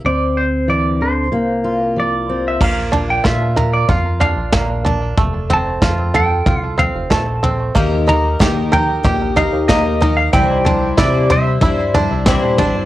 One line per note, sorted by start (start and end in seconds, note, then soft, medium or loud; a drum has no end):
0.04 1.30 D2 medium
0.04 0.62 D3 medium
0.04 1.29 C4 soft
0.04 0.38 D5 medium
0.37 0.70 C5 medium
0.68 1.00 E3 medium
0.68 1.02 D5 medium
1.01 1.31 D3 medium
1.01 1.86 C5 medium
1.32 2.58 C2 medium
1.32 1.90 C3 medium
1.32 2.57 A#3 medium
1.64 5.18 F4 medium
1.86 2.26 A#4 medium
1.96 2.54 F3 medium
1.96 2.47 D5 medium
2.29 2.61 C4 medium
2.48 2.63 E5 medium
2.61 3.21 A#1 medium
2.61 3.89 A#3 medium
2.61 3.10 F5 medium
2.61 kick loud
2.61 floor tom medium
2.61 crash medium
2.92 4.19 D4 medium
2.92 floor tom medium
3.10 3.26 G5 medium
3.24 3.85 A#2 medium
3.24 3.88 F4 medium
3.24 3.71 E5 medium
3.24 kick loud
3.24 snare medium
3.24 floor tom medium
3.56 4.84 A#4 medium
3.56 floor tom medium
3.73 3.90 D5 medium
3.89 4.35 F2 medium
3.89 5.18 F4 medium
3.89 4.19 F5 medium
3.89 kick loud
3.89 floor tom medium
4.20 4.84 D4 medium
4.20 4.81 F5 medium
4.20 floor tom medium
4.36 4.52 A#1 medium
4.52 5.14 A#1 loud
4.52 5.17 A#3 medium
4.52 kick loud
4.52 snare loud
4.52 floor tom medium
4.85 5.17 D4 medium
4.85 floor tom medium
5.18 5.78 F1 medium
5.18 6.46 A3 medium
5.18 kick loud
5.18 floor tom medium
5.50 6.76 C4 medium
5.50 6.16 A5 loud
5.50 floor tom medium
5.81 6.42 F2 medium
5.81 6.45 F4 medium
5.81 kick medium
5.81 snare medium
5.81 floor tom medium
6.14 7.43 A4 medium
6.14 6.61 G5 medium
6.14 floor tom medium
6.46 6.92 C2 medium
6.46 7.75 F4 medium
6.46 kick loud
6.46 floor tom medium
6.61 6.75 F5 medium
6.78 7.42 C4 medium
6.78 7.12 F5 medium
6.78 floor tom medium
6.95 7.10 F1 loud
7.10 7.71 A#1 loud
7.10 7.74 A3 medium
7.10 7.56 A5 medium
7.10 kick medium
7.10 snare loud
7.10 floor tom medium
7.43 7.75 C4 medium
7.43 floor tom medium
7.75 8.36 D#2 loud
7.75 8.07 D#3 medium
7.75 9.04 A#3 medium
7.75 8.07 A#3 medium
7.75 8.08 D#4 medium
7.75 8.07 G4 medium
7.75 8.06 A#4 medium
7.75 kick loud
7.75 floor tom medium
8.07 9.35 D#4 medium
8.07 8.39 D#4 soft
8.07 8.40 G4 soft
8.07 8.39 A#4 soft
8.07 8.73 A#5 loud
8.07 floor tom medium
8.39 8.72 D#3 medium
8.39 9.01 D#3 loud
8.39 8.72 A#3 medium
8.39 8.72 D#4 medium
8.39 9.03 G4 medium
8.39 8.71 G4 medium
8.39 8.70 A#4 medium
8.39 kick loud
8.39 snare loud
8.39 floor tom medium
8.71 9.03 D#4 soft
8.71 9.04 G4 soft
8.71 9.04 A#4 soft
8.71 10.01 A#4 medium
8.71 9.37 G5 medium
8.71 floor tom medium
9.03 9.50 A#1 medium
9.03 9.36 A#3 medium
9.03 9.36 D#4 medium
9.03 10.33 G4 medium
9.03 9.36 G4 medium
9.03 9.35 A#4 medium
9.03 kick loud
9.03 floor tom medium
9.36 10.00 D#4 medium
9.36 9.68 D#4 soft
9.36 9.68 G4 soft
9.36 9.68 A#4 medium
9.36 9.67 F5 medium
9.36 floor tom medium
9.53 9.68 D#2 loud
9.68 10.29 D#2 loud
9.68 10.01 D#3 medium
9.68 10.33 A#3 medium
9.68 10.01 A#3 medium
9.68 10.01 D#4 medium
9.68 10.00 G4 medium
9.68 9.99 A#4 medium
9.68 10.18 D#5 medium
9.68 kick loud
9.68 snare loud
9.68 floor tom medium
10.00 10.33 D#4 medium
10.00 10.33 D#4 soft
10.00 10.33 G4 medium
10.00 10.33 A#4 medium
10.00 floor tom medium
10.17 10.33 F5 medium
10.33 10.94 C2 loud
10.33 10.65 C3 medium
10.33 10.65 E3 medium
10.33 10.65 G3 medium
10.33 11.62 C4 medium
10.33 10.66 D4 medium
10.33 10.66 E4 medium
10.33 10.65 C5 medium
10.33 10.99 G5 medium
10.33 kick loud
10.33 floor tom medium
10.65 10.98 G3 soft
10.65 11.93 D4 medium
10.65 10.99 D4 soft
10.65 10.98 E4 soft
10.65 10.98 C5 soft
10.65 floor tom medium
10.97 11.58 C3 loud
10.97 11.30 C3 medium
10.97 11.30 E3 medium
10.97 11.31 G3 medium
10.97 11.30 D4 medium
10.97 11.30 E4 medium
10.97 11.29 C5 medium
10.97 11.31 D5 medium
10.97 kick loud
10.97 snare loud
10.97 floor tom medium
11.30 11.61 G3 soft
11.30 11.63 D4 soft
11.30 11.63 E4 soft
11.30 12.59 C5 medium
11.30 11.62 C5 soft
11.30 12.24 E5 medium
11.30 floor tom medium
11.61 12.08 G2 medium
11.61 11.94 G3 medium
11.61 11.95 D4 medium
11.61 12.85 E4 medium
11.61 11.95 E4 medium
11.61 11.94 C5 medium
11.61 kick loud
11.61 floor tom medium
11.94 12.27 G3 soft
11.94 12.57 D4 medium
11.94 12.27 D4 soft
11.94 12.27 E4 soft
11.94 12.27 C5 medium
11.94 floor tom medium
12.11 12.26 C2 loud
12.26 12.41 C2 medium
12.26 12.59 C3 medium
12.26 12.59 E3 medium
12.26 12.59 G3 medium
12.26 12.85 C4 medium
12.26 12.59 D4 medium
12.26 12.60 E4 loud
12.26 12.58 C5 medium
12.26 kick loud
12.26 snare loud
12.26 floor tom medium
12.44 12.58 A#1 medium
12.58 12.74 A1 medium
12.58 12.85 G3 medium
12.58 12.85 D4 medium
12.58 12.85 E4 medium
12.58 12.85 C5 medium
12.58 floor tom medium
12.75 12.85 G1 medium